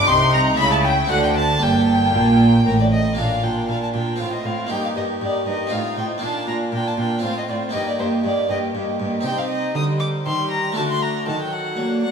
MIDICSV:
0, 0, Header, 1, 8, 480
1, 0, Start_track
1, 0, Key_signature, -2, "minor"
1, 0, Tempo, 515021
1, 76, Time_signature, 3, 2, 24, 8
1, 2966, Key_signature, -2, "major"
1, 3918, Tempo, 504626
1, 11442, End_track
2, 0, Start_track
2, 0, Title_t, "Violin"
2, 0, Program_c, 0, 40
2, 67, Note_on_c, 0, 84, 87
2, 308, Note_off_c, 0, 84, 0
2, 313, Note_on_c, 0, 82, 73
2, 388, Note_off_c, 0, 82, 0
2, 557, Note_on_c, 0, 83, 84
2, 663, Note_off_c, 0, 83, 0
2, 669, Note_on_c, 0, 81, 68
2, 717, Note_off_c, 0, 81, 0
2, 788, Note_on_c, 0, 79, 64
2, 863, Note_off_c, 0, 79, 0
2, 1029, Note_on_c, 0, 78, 76
2, 1148, Note_off_c, 0, 78, 0
2, 1152, Note_on_c, 0, 79, 65
2, 1200, Note_off_c, 0, 79, 0
2, 1269, Note_on_c, 0, 81, 76
2, 1511, Note_on_c, 0, 79, 73
2, 1525, Note_off_c, 0, 81, 0
2, 2475, Note_off_c, 0, 79, 0
2, 2481, Note_on_c, 0, 70, 70
2, 2594, Note_off_c, 0, 70, 0
2, 2612, Note_on_c, 0, 74, 60
2, 2659, Note_off_c, 0, 74, 0
2, 2717, Note_on_c, 0, 75, 70
2, 2952, Note_off_c, 0, 75, 0
2, 2958, Note_on_c, 0, 77, 54
2, 3199, Note_on_c, 0, 79, 47
2, 3213, Note_off_c, 0, 77, 0
2, 3433, Note_off_c, 0, 79, 0
2, 3438, Note_on_c, 0, 77, 49
2, 3557, Note_off_c, 0, 77, 0
2, 3570, Note_on_c, 0, 81, 44
2, 3616, Note_off_c, 0, 81, 0
2, 3676, Note_on_c, 0, 79, 43
2, 3905, Note_off_c, 0, 79, 0
2, 3911, Note_on_c, 0, 77, 53
2, 4032, Note_off_c, 0, 77, 0
2, 4039, Note_on_c, 0, 75, 46
2, 4156, Note_on_c, 0, 77, 50
2, 4170, Note_off_c, 0, 75, 0
2, 4394, Note_on_c, 0, 79, 61
2, 4408, Note_off_c, 0, 77, 0
2, 4517, Note_off_c, 0, 79, 0
2, 4527, Note_on_c, 0, 77, 54
2, 4574, Note_off_c, 0, 77, 0
2, 4644, Note_on_c, 0, 75, 48
2, 4721, Note_off_c, 0, 75, 0
2, 4889, Note_on_c, 0, 74, 58
2, 5120, Note_off_c, 0, 74, 0
2, 5125, Note_on_c, 0, 75, 49
2, 5363, Note_on_c, 0, 77, 51
2, 5377, Note_off_c, 0, 75, 0
2, 5604, Note_off_c, 0, 77, 0
2, 5608, Note_on_c, 0, 79, 53
2, 5685, Note_off_c, 0, 79, 0
2, 5847, Note_on_c, 0, 81, 55
2, 6076, Note_off_c, 0, 81, 0
2, 6082, Note_on_c, 0, 82, 59
2, 6158, Note_off_c, 0, 82, 0
2, 6337, Note_on_c, 0, 79, 66
2, 6458, Note_on_c, 0, 81, 48
2, 6472, Note_off_c, 0, 79, 0
2, 6565, Note_off_c, 0, 81, 0
2, 6571, Note_on_c, 0, 79, 57
2, 6796, Note_off_c, 0, 79, 0
2, 6802, Note_on_c, 0, 77, 57
2, 6920, Note_off_c, 0, 77, 0
2, 6937, Note_on_c, 0, 75, 49
2, 6982, Note_off_c, 0, 75, 0
2, 7041, Note_on_c, 0, 74, 49
2, 7117, Note_off_c, 0, 74, 0
2, 7279, Note_on_c, 0, 75, 61
2, 7398, Note_off_c, 0, 75, 0
2, 7414, Note_on_c, 0, 74, 58
2, 7460, Note_off_c, 0, 74, 0
2, 7522, Note_on_c, 0, 72, 55
2, 7598, Note_off_c, 0, 72, 0
2, 7768, Note_on_c, 0, 74, 56
2, 8000, Note_off_c, 0, 74, 0
2, 8005, Note_on_c, 0, 75, 54
2, 8081, Note_off_c, 0, 75, 0
2, 8724, Note_on_c, 0, 79, 65
2, 8844, Note_on_c, 0, 77, 60
2, 8859, Note_off_c, 0, 79, 0
2, 8950, Note_off_c, 0, 77, 0
2, 8956, Note_on_c, 0, 75, 61
2, 9194, Note_off_c, 0, 75, 0
2, 9199, Note_on_c, 0, 87, 69
2, 9275, Note_off_c, 0, 87, 0
2, 9428, Note_on_c, 0, 86, 64
2, 9504, Note_off_c, 0, 86, 0
2, 9677, Note_on_c, 0, 84, 74
2, 9909, Note_off_c, 0, 84, 0
2, 9915, Note_on_c, 0, 82, 65
2, 10152, Note_off_c, 0, 82, 0
2, 10157, Note_on_c, 0, 81, 73
2, 10205, Note_off_c, 0, 81, 0
2, 10290, Note_on_c, 0, 84, 73
2, 10402, Note_on_c, 0, 82, 63
2, 10416, Note_off_c, 0, 84, 0
2, 10639, Note_off_c, 0, 82, 0
2, 10646, Note_on_c, 0, 81, 68
2, 10759, Note_off_c, 0, 81, 0
2, 10778, Note_on_c, 0, 79, 60
2, 10885, Note_on_c, 0, 78, 64
2, 10899, Note_off_c, 0, 79, 0
2, 11357, Note_off_c, 0, 78, 0
2, 11363, Note_on_c, 0, 78, 69
2, 11442, Note_off_c, 0, 78, 0
2, 11442, End_track
3, 0, Start_track
3, 0, Title_t, "Violin section"
3, 0, Program_c, 1, 48
3, 80, Note_on_c, 1, 84, 92
3, 155, Note_off_c, 1, 84, 0
3, 302, Note_on_c, 1, 82, 83
3, 540, Note_off_c, 1, 82, 0
3, 540, Note_on_c, 1, 83, 107
3, 660, Note_on_c, 1, 81, 85
3, 662, Note_off_c, 1, 83, 0
3, 710, Note_off_c, 1, 81, 0
3, 786, Note_on_c, 1, 79, 94
3, 1024, Note_off_c, 1, 79, 0
3, 1025, Note_on_c, 1, 78, 86
3, 1142, Note_on_c, 1, 79, 77
3, 1148, Note_off_c, 1, 78, 0
3, 1262, Note_on_c, 1, 81, 85
3, 1264, Note_off_c, 1, 79, 0
3, 1509, Note_off_c, 1, 81, 0
3, 1511, Note_on_c, 1, 79, 64
3, 1577, Note_on_c, 1, 81, 64
3, 1590, Note_off_c, 1, 79, 0
3, 1654, Note_on_c, 1, 79, 67
3, 1661, Note_off_c, 1, 81, 0
3, 1728, Note_on_c, 1, 81, 67
3, 1738, Note_off_c, 1, 79, 0
3, 1812, Note_on_c, 1, 79, 76
3, 1814, Note_off_c, 1, 81, 0
3, 1894, Note_off_c, 1, 79, 0
3, 1899, Note_on_c, 1, 81, 63
3, 1964, Note_on_c, 1, 79, 61
3, 1976, Note_off_c, 1, 81, 0
3, 2046, Note_off_c, 1, 79, 0
3, 2056, Note_on_c, 1, 81, 79
3, 2131, Note_off_c, 1, 81, 0
3, 2136, Note_on_c, 1, 79, 65
3, 2209, Note_off_c, 1, 79, 0
3, 2209, Note_on_c, 1, 81, 70
3, 2284, Note_off_c, 1, 81, 0
3, 2293, Note_on_c, 1, 79, 90
3, 2731, Note_off_c, 1, 79, 0
3, 2965, Note_on_c, 1, 70, 35
3, 3199, Note_off_c, 1, 70, 0
3, 3213, Note_on_c, 1, 70, 34
3, 3428, Note_off_c, 1, 70, 0
3, 3439, Note_on_c, 1, 70, 37
3, 3673, Note_off_c, 1, 70, 0
3, 3684, Note_on_c, 1, 70, 35
3, 3914, Note_off_c, 1, 70, 0
3, 3922, Note_on_c, 1, 72, 34
3, 4153, Note_off_c, 1, 72, 0
3, 4164, Note_on_c, 1, 72, 33
3, 4397, Note_off_c, 1, 72, 0
3, 4409, Note_on_c, 1, 70, 33
3, 4641, Note_off_c, 1, 70, 0
3, 4654, Note_on_c, 1, 70, 31
3, 4881, Note_off_c, 1, 70, 0
3, 4892, Note_on_c, 1, 70, 35
3, 5124, Note_off_c, 1, 70, 0
3, 5134, Note_on_c, 1, 70, 36
3, 5365, Note_off_c, 1, 70, 0
3, 5368, Note_on_c, 1, 72, 33
3, 5602, Note_off_c, 1, 72, 0
3, 5617, Note_on_c, 1, 72, 34
3, 5846, Note_off_c, 1, 72, 0
3, 5850, Note_on_c, 1, 70, 38
3, 6082, Note_off_c, 1, 70, 0
3, 6096, Note_on_c, 1, 70, 36
3, 6325, Note_off_c, 1, 70, 0
3, 6336, Note_on_c, 1, 70, 37
3, 6551, Note_off_c, 1, 70, 0
3, 6563, Note_on_c, 1, 70, 40
3, 6795, Note_on_c, 1, 72, 33
3, 6798, Note_off_c, 1, 70, 0
3, 7034, Note_off_c, 1, 72, 0
3, 7055, Note_on_c, 1, 72, 36
3, 7284, Note_off_c, 1, 72, 0
3, 7289, Note_on_c, 1, 75, 37
3, 7521, Note_off_c, 1, 75, 0
3, 7531, Note_on_c, 1, 75, 38
3, 7748, Note_off_c, 1, 75, 0
3, 7759, Note_on_c, 1, 75, 42
3, 7989, Note_off_c, 1, 75, 0
3, 8001, Note_on_c, 1, 75, 40
3, 8236, Note_off_c, 1, 75, 0
3, 8250, Note_on_c, 1, 75, 39
3, 8475, Note_off_c, 1, 75, 0
3, 8486, Note_on_c, 1, 75, 42
3, 8720, Note_off_c, 1, 75, 0
3, 8731, Note_on_c, 1, 75, 46
3, 9174, Note_off_c, 1, 75, 0
3, 9210, Note_on_c, 1, 72, 51
3, 10159, Note_on_c, 1, 74, 43
3, 10163, Note_off_c, 1, 72, 0
3, 10628, Note_off_c, 1, 74, 0
3, 10636, Note_on_c, 1, 69, 54
3, 11442, Note_off_c, 1, 69, 0
3, 11442, End_track
4, 0, Start_track
4, 0, Title_t, "Violin section"
4, 0, Program_c, 2, 48
4, 74, Note_on_c, 2, 84, 80
4, 307, Note_off_c, 2, 84, 0
4, 313, Note_on_c, 2, 82, 90
4, 549, Note_on_c, 2, 83, 85
4, 550, Note_off_c, 2, 82, 0
4, 669, Note_off_c, 2, 83, 0
4, 679, Note_on_c, 2, 81, 77
4, 794, Note_off_c, 2, 81, 0
4, 804, Note_on_c, 2, 79, 76
4, 1037, Note_off_c, 2, 79, 0
4, 1041, Note_on_c, 2, 78, 76
4, 1156, Note_off_c, 2, 78, 0
4, 1161, Note_on_c, 2, 79, 68
4, 1276, Note_off_c, 2, 79, 0
4, 1278, Note_on_c, 2, 81, 76
4, 1352, Note_off_c, 2, 81, 0
4, 1524, Note_on_c, 2, 79, 70
4, 2706, Note_off_c, 2, 79, 0
4, 2963, Note_on_c, 2, 65, 35
4, 3196, Note_off_c, 2, 65, 0
4, 3207, Note_on_c, 2, 65, 33
4, 3428, Note_off_c, 2, 65, 0
4, 3440, Note_on_c, 2, 65, 32
4, 3668, Note_off_c, 2, 65, 0
4, 3680, Note_on_c, 2, 65, 35
4, 3904, Note_off_c, 2, 65, 0
4, 3915, Note_on_c, 2, 65, 37
4, 4152, Note_off_c, 2, 65, 0
4, 4164, Note_on_c, 2, 65, 35
4, 4397, Note_off_c, 2, 65, 0
4, 4399, Note_on_c, 2, 67, 36
4, 4620, Note_off_c, 2, 67, 0
4, 4632, Note_on_c, 2, 67, 33
4, 4858, Note_off_c, 2, 67, 0
4, 4869, Note_on_c, 2, 67, 37
4, 5113, Note_off_c, 2, 67, 0
4, 5122, Note_on_c, 2, 67, 36
4, 5359, Note_off_c, 2, 67, 0
4, 5362, Note_on_c, 2, 65, 39
4, 5591, Note_off_c, 2, 65, 0
4, 5602, Note_on_c, 2, 65, 39
4, 5829, Note_off_c, 2, 65, 0
4, 5841, Note_on_c, 2, 65, 39
4, 6077, Note_off_c, 2, 65, 0
4, 6087, Note_on_c, 2, 65, 34
4, 6314, Note_off_c, 2, 65, 0
4, 6326, Note_on_c, 2, 65, 39
4, 6550, Note_off_c, 2, 65, 0
4, 6562, Note_on_c, 2, 65, 38
4, 6786, Note_off_c, 2, 65, 0
4, 6798, Note_on_c, 2, 65, 39
4, 7028, Note_off_c, 2, 65, 0
4, 7039, Note_on_c, 2, 65, 40
4, 7276, Note_off_c, 2, 65, 0
4, 7276, Note_on_c, 2, 67, 42
4, 7493, Note_off_c, 2, 67, 0
4, 7504, Note_on_c, 2, 67, 43
4, 7732, Note_off_c, 2, 67, 0
4, 7744, Note_on_c, 2, 67, 42
4, 7970, Note_off_c, 2, 67, 0
4, 7981, Note_on_c, 2, 67, 46
4, 8213, Note_off_c, 2, 67, 0
4, 8224, Note_on_c, 2, 67, 39
4, 8460, Note_off_c, 2, 67, 0
4, 8472, Note_on_c, 2, 67, 44
4, 8710, Note_on_c, 2, 63, 42
4, 8712, Note_off_c, 2, 67, 0
4, 9637, Note_off_c, 2, 63, 0
4, 9666, Note_on_c, 2, 67, 53
4, 10147, Note_on_c, 2, 66, 44
4, 10152, Note_off_c, 2, 67, 0
4, 10613, Note_off_c, 2, 66, 0
4, 10624, Note_on_c, 2, 66, 47
4, 11100, Note_off_c, 2, 66, 0
4, 11103, Note_on_c, 2, 62, 54
4, 11442, Note_off_c, 2, 62, 0
4, 11442, End_track
5, 0, Start_track
5, 0, Title_t, "Viola section"
5, 0, Program_c, 3, 48
5, 80, Note_on_c, 3, 63, 75
5, 551, Note_on_c, 3, 64, 68
5, 552, Note_off_c, 3, 63, 0
5, 1021, Note_off_c, 3, 64, 0
5, 1038, Note_on_c, 3, 62, 67
5, 1508, Note_off_c, 3, 62, 0
5, 1516, Note_on_c, 3, 58, 71
5, 2778, Note_off_c, 3, 58, 0
5, 2965, Note_on_c, 3, 62, 36
5, 3196, Note_off_c, 3, 62, 0
5, 3207, Note_on_c, 3, 62, 35
5, 3424, Note_off_c, 3, 62, 0
5, 3435, Note_on_c, 3, 62, 32
5, 3667, Note_off_c, 3, 62, 0
5, 3679, Note_on_c, 3, 62, 37
5, 3911, Note_off_c, 3, 62, 0
5, 3919, Note_on_c, 3, 60, 36
5, 4152, Note_off_c, 3, 60, 0
5, 4163, Note_on_c, 3, 60, 35
5, 4397, Note_off_c, 3, 60, 0
5, 4403, Note_on_c, 3, 63, 38
5, 4638, Note_off_c, 3, 63, 0
5, 4649, Note_on_c, 3, 63, 31
5, 4874, Note_off_c, 3, 63, 0
5, 4886, Note_on_c, 3, 63, 37
5, 5121, Note_off_c, 3, 63, 0
5, 5137, Note_on_c, 3, 63, 35
5, 5357, Note_off_c, 3, 63, 0
5, 5368, Note_on_c, 3, 63, 31
5, 5602, Note_off_c, 3, 63, 0
5, 5615, Note_on_c, 3, 63, 36
5, 5845, Note_off_c, 3, 63, 0
5, 5853, Note_on_c, 3, 62, 43
5, 6073, Note_off_c, 3, 62, 0
5, 6085, Note_on_c, 3, 62, 38
5, 6319, Note_off_c, 3, 62, 0
5, 6331, Note_on_c, 3, 62, 41
5, 6562, Note_off_c, 3, 62, 0
5, 6577, Note_on_c, 3, 62, 38
5, 6805, Note_off_c, 3, 62, 0
5, 6807, Note_on_c, 3, 60, 38
5, 7037, Note_off_c, 3, 60, 0
5, 7048, Note_on_c, 3, 60, 40
5, 7280, Note_off_c, 3, 60, 0
5, 7289, Note_on_c, 3, 58, 39
5, 7516, Note_off_c, 3, 58, 0
5, 7527, Note_on_c, 3, 58, 39
5, 7760, Note_off_c, 3, 58, 0
5, 7773, Note_on_c, 3, 58, 42
5, 7996, Note_off_c, 3, 58, 0
5, 8007, Note_on_c, 3, 58, 43
5, 8240, Note_off_c, 3, 58, 0
5, 8251, Note_on_c, 3, 58, 45
5, 8482, Note_off_c, 3, 58, 0
5, 8492, Note_on_c, 3, 58, 42
5, 8723, Note_off_c, 3, 58, 0
5, 8735, Note_on_c, 3, 60, 42
5, 9176, Note_off_c, 3, 60, 0
5, 9215, Note_on_c, 3, 55, 42
5, 9675, Note_off_c, 3, 55, 0
5, 9686, Note_on_c, 3, 55, 49
5, 10153, Note_off_c, 3, 55, 0
5, 10161, Note_on_c, 3, 57, 49
5, 10638, Note_off_c, 3, 57, 0
5, 10642, Note_on_c, 3, 54, 50
5, 11117, Note_on_c, 3, 58, 52
5, 11119, Note_off_c, 3, 54, 0
5, 11357, Note_off_c, 3, 58, 0
5, 11361, Note_on_c, 3, 57, 49
5, 11442, Note_off_c, 3, 57, 0
5, 11442, End_track
6, 0, Start_track
6, 0, Title_t, "Harpsichord"
6, 0, Program_c, 4, 6
6, 27, Note_on_c, 4, 60, 59
6, 39, Note_on_c, 4, 63, 55
6, 52, Note_on_c, 4, 67, 59
6, 66, Note_on_c, 4, 48, 60
6, 505, Note_on_c, 4, 57, 51
6, 507, Note_off_c, 4, 48, 0
6, 510, Note_off_c, 4, 60, 0
6, 516, Note_off_c, 4, 63, 0
6, 519, Note_on_c, 4, 64, 51
6, 523, Note_off_c, 4, 67, 0
6, 532, Note_on_c, 4, 69, 52
6, 544, Note_on_c, 4, 49, 54
6, 986, Note_on_c, 4, 60, 50
6, 990, Note_off_c, 4, 49, 0
6, 992, Note_off_c, 4, 57, 0
6, 996, Note_on_c, 4, 62, 45
6, 999, Note_off_c, 4, 64, 0
6, 1006, Note_off_c, 4, 69, 0
6, 1013, Note_on_c, 4, 66, 48
6, 1024, Note_on_c, 4, 50, 57
6, 1467, Note_on_c, 4, 58, 53
6, 1471, Note_off_c, 4, 62, 0
6, 1474, Note_off_c, 4, 50, 0
6, 1477, Note_off_c, 4, 60, 0
6, 1482, Note_on_c, 4, 62, 58
6, 1491, Note_off_c, 4, 66, 0
6, 1494, Note_on_c, 4, 67, 47
6, 1512, Note_on_c, 4, 43, 65
6, 1961, Note_off_c, 4, 43, 0
6, 1997, Note_on_c, 4, 46, 49
6, 2430, Note_off_c, 4, 58, 0
6, 2438, Note_off_c, 4, 62, 0
6, 2445, Note_off_c, 4, 46, 0
6, 2480, Note_on_c, 4, 45, 52
6, 2918, Note_off_c, 4, 67, 0
6, 2919, Note_on_c, 4, 58, 29
6, 2927, Note_off_c, 4, 45, 0
6, 2932, Note_on_c, 4, 62, 29
6, 2948, Note_on_c, 4, 65, 31
6, 2961, Note_on_c, 4, 46, 30
6, 3177, Note_off_c, 4, 46, 0
6, 3201, Note_on_c, 4, 46, 28
6, 3416, Note_off_c, 4, 46, 0
6, 3439, Note_on_c, 4, 46, 34
6, 3654, Note_off_c, 4, 46, 0
6, 3670, Note_on_c, 4, 46, 31
6, 3864, Note_off_c, 4, 58, 0
6, 3871, Note_off_c, 4, 62, 0
6, 3876, Note_on_c, 4, 60, 26
6, 3879, Note_off_c, 4, 65, 0
6, 3888, Note_off_c, 4, 46, 0
6, 3889, Note_on_c, 4, 65, 28
6, 3917, Note_on_c, 4, 45, 30
6, 4134, Note_off_c, 4, 45, 0
6, 4160, Note_on_c, 4, 45, 30
6, 4358, Note_on_c, 4, 58, 32
6, 4363, Note_off_c, 4, 60, 0
6, 4370, Note_off_c, 4, 65, 0
6, 4370, Note_on_c, 4, 63, 28
6, 4376, Note_off_c, 4, 45, 0
6, 4387, Note_on_c, 4, 67, 31
6, 4400, Note_on_c, 4, 43, 33
6, 4617, Note_off_c, 4, 43, 0
6, 4635, Note_on_c, 4, 43, 30
6, 4856, Note_off_c, 4, 43, 0
6, 4881, Note_on_c, 4, 43, 32
6, 5099, Note_off_c, 4, 43, 0
6, 5117, Note_on_c, 4, 43, 33
6, 5313, Note_on_c, 4, 60, 28
6, 5315, Note_off_c, 4, 58, 0
6, 5317, Note_off_c, 4, 63, 0
6, 5329, Note_on_c, 4, 63, 28
6, 5330, Note_off_c, 4, 67, 0
6, 5337, Note_off_c, 4, 43, 0
6, 5344, Note_on_c, 4, 65, 28
6, 5358, Note_on_c, 4, 45, 30
6, 5577, Note_off_c, 4, 45, 0
6, 5595, Note_on_c, 4, 45, 36
6, 5797, Note_on_c, 4, 58, 32
6, 5804, Note_off_c, 4, 60, 0
6, 5808, Note_on_c, 4, 62, 31
6, 5812, Note_off_c, 4, 63, 0
6, 5813, Note_off_c, 4, 65, 0
6, 5815, Note_off_c, 4, 45, 0
6, 5824, Note_on_c, 4, 65, 30
6, 5836, Note_on_c, 4, 46, 39
6, 6055, Note_off_c, 4, 46, 0
6, 6075, Note_on_c, 4, 46, 32
6, 6295, Note_off_c, 4, 46, 0
6, 6313, Note_on_c, 4, 46, 36
6, 6534, Note_off_c, 4, 46, 0
6, 6554, Note_on_c, 4, 46, 34
6, 6750, Note_off_c, 4, 58, 0
6, 6755, Note_off_c, 4, 65, 0
6, 6755, Note_on_c, 4, 60, 28
6, 6756, Note_off_c, 4, 62, 0
6, 6767, Note_on_c, 4, 65, 28
6, 6774, Note_off_c, 4, 46, 0
6, 6799, Note_on_c, 4, 45, 33
6, 7016, Note_off_c, 4, 45, 0
6, 7040, Note_on_c, 4, 45, 37
6, 7236, Note_on_c, 4, 58, 31
6, 7243, Note_off_c, 4, 60, 0
6, 7249, Note_off_c, 4, 65, 0
6, 7249, Note_on_c, 4, 63, 32
6, 7257, Note_off_c, 4, 45, 0
6, 7265, Note_on_c, 4, 67, 36
6, 7278, Note_on_c, 4, 43, 38
6, 7496, Note_off_c, 4, 43, 0
6, 7523, Note_on_c, 4, 43, 33
6, 7739, Note_off_c, 4, 43, 0
6, 7754, Note_on_c, 4, 43, 34
6, 7973, Note_off_c, 4, 43, 0
6, 7993, Note_on_c, 4, 43, 35
6, 8213, Note_off_c, 4, 43, 0
6, 8240, Note_on_c, 4, 43, 36
6, 8457, Note_off_c, 4, 43, 0
6, 8477, Note_on_c, 4, 43, 37
6, 8661, Note_off_c, 4, 58, 0
6, 8668, Note_off_c, 4, 63, 0
6, 8675, Note_off_c, 4, 67, 0
6, 8676, Note_on_c, 4, 60, 39
6, 8690, Note_on_c, 4, 63, 39
6, 8696, Note_off_c, 4, 43, 0
6, 8702, Note_on_c, 4, 67, 38
6, 8718, Note_on_c, 4, 48, 38
6, 9163, Note_off_c, 4, 48, 0
6, 9195, Note_on_c, 4, 50, 42
6, 9639, Note_off_c, 4, 50, 0
6, 9679, Note_on_c, 4, 51, 41
6, 10098, Note_off_c, 4, 60, 0
6, 10105, Note_off_c, 4, 63, 0
6, 10111, Note_off_c, 4, 67, 0
6, 10118, Note_on_c, 4, 57, 42
6, 10120, Note_off_c, 4, 51, 0
6, 10132, Note_on_c, 4, 62, 40
6, 10144, Note_on_c, 4, 66, 39
6, 10157, Note_on_c, 4, 50, 41
6, 10598, Note_off_c, 4, 50, 0
6, 10602, Note_off_c, 4, 57, 0
6, 10634, Note_on_c, 4, 51, 44
6, 11077, Note_off_c, 4, 51, 0
6, 11113, Note_on_c, 4, 54, 45
6, 11442, Note_off_c, 4, 54, 0
6, 11442, Note_off_c, 4, 62, 0
6, 11442, Note_off_c, 4, 66, 0
6, 11442, End_track
7, 0, Start_track
7, 0, Title_t, "Cello section"
7, 0, Program_c, 5, 48
7, 84, Note_on_c, 5, 48, 72
7, 544, Note_off_c, 5, 48, 0
7, 552, Note_on_c, 5, 49, 81
7, 1021, Note_off_c, 5, 49, 0
7, 1031, Note_on_c, 5, 50, 60
7, 1505, Note_off_c, 5, 50, 0
7, 1517, Note_on_c, 5, 43, 63
7, 1992, Note_off_c, 5, 43, 0
7, 1997, Note_on_c, 5, 46, 62
7, 2480, Note_on_c, 5, 45, 60
7, 2482, Note_off_c, 5, 46, 0
7, 2954, Note_off_c, 5, 45, 0
7, 2959, Note_on_c, 5, 46, 38
7, 3034, Note_off_c, 5, 46, 0
7, 3201, Note_on_c, 5, 46, 33
7, 3275, Note_off_c, 5, 46, 0
7, 3439, Note_on_c, 5, 46, 40
7, 3514, Note_off_c, 5, 46, 0
7, 3677, Note_on_c, 5, 46, 38
7, 3751, Note_off_c, 5, 46, 0
7, 3911, Note_on_c, 5, 45, 35
7, 3987, Note_off_c, 5, 45, 0
7, 4147, Note_on_c, 5, 45, 36
7, 4223, Note_off_c, 5, 45, 0
7, 4395, Note_on_c, 5, 43, 34
7, 4471, Note_off_c, 5, 43, 0
7, 4639, Note_on_c, 5, 43, 38
7, 4715, Note_off_c, 5, 43, 0
7, 4878, Note_on_c, 5, 43, 39
7, 4954, Note_off_c, 5, 43, 0
7, 5117, Note_on_c, 5, 43, 36
7, 5193, Note_off_c, 5, 43, 0
7, 5353, Note_on_c, 5, 45, 36
7, 5429, Note_off_c, 5, 45, 0
7, 5596, Note_on_c, 5, 45, 38
7, 5673, Note_off_c, 5, 45, 0
7, 5840, Note_on_c, 5, 46, 41
7, 5916, Note_off_c, 5, 46, 0
7, 6077, Note_on_c, 5, 46, 38
7, 6153, Note_off_c, 5, 46, 0
7, 6316, Note_on_c, 5, 46, 39
7, 6392, Note_off_c, 5, 46, 0
7, 6553, Note_on_c, 5, 46, 43
7, 6630, Note_off_c, 5, 46, 0
7, 6789, Note_on_c, 5, 45, 35
7, 6865, Note_off_c, 5, 45, 0
7, 7035, Note_on_c, 5, 45, 39
7, 7111, Note_off_c, 5, 45, 0
7, 7279, Note_on_c, 5, 43, 44
7, 7355, Note_off_c, 5, 43, 0
7, 7517, Note_on_c, 5, 43, 42
7, 7594, Note_off_c, 5, 43, 0
7, 7760, Note_on_c, 5, 43, 48
7, 7836, Note_off_c, 5, 43, 0
7, 7996, Note_on_c, 5, 43, 46
7, 8072, Note_off_c, 5, 43, 0
7, 8238, Note_on_c, 5, 43, 41
7, 8314, Note_off_c, 5, 43, 0
7, 8484, Note_on_c, 5, 43, 46
7, 8560, Note_off_c, 5, 43, 0
7, 8720, Note_on_c, 5, 48, 50
7, 9168, Note_off_c, 5, 48, 0
7, 9199, Note_on_c, 5, 50, 57
7, 9646, Note_off_c, 5, 50, 0
7, 9683, Note_on_c, 5, 51, 49
7, 10127, Note_off_c, 5, 51, 0
7, 10157, Note_on_c, 5, 50, 50
7, 10603, Note_off_c, 5, 50, 0
7, 10640, Note_on_c, 5, 51, 58
7, 11084, Note_off_c, 5, 51, 0
7, 11113, Note_on_c, 5, 54, 50
7, 11442, Note_off_c, 5, 54, 0
7, 11442, End_track
8, 0, Start_track
8, 0, Title_t, "Double bass section"
8, 0, Program_c, 6, 48
8, 82, Note_on_c, 6, 36, 70
8, 543, Note_off_c, 6, 36, 0
8, 556, Note_on_c, 6, 37, 73
8, 1023, Note_off_c, 6, 37, 0
8, 1031, Note_on_c, 6, 38, 72
8, 1505, Note_off_c, 6, 38, 0
8, 1516, Note_on_c, 6, 31, 64
8, 1991, Note_off_c, 6, 31, 0
8, 2005, Note_on_c, 6, 34, 62
8, 2486, Note_off_c, 6, 34, 0
8, 2490, Note_on_c, 6, 33, 72
8, 2960, Note_off_c, 6, 33, 0
8, 11442, End_track
0, 0, End_of_file